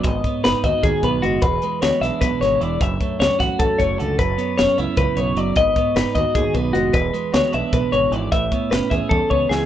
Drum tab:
HH |xxxxxxx|xxxxxxx|xxxxxxx|xxxxxxx|
SD |--o----|--oo-o-|--oo---|--o----|
T1 |-------|-------|-------|-------|
BD |oo-ooo-|o---o--|oo-ooo-|o---o--|

HH |xxxxxxx|xxxxxxx|xxxx---|
SD |--o----|--o----|--o---o|
T1 |-------|-------|----o--|
BD |oo-ooo-|o---o--|oo-ooo-|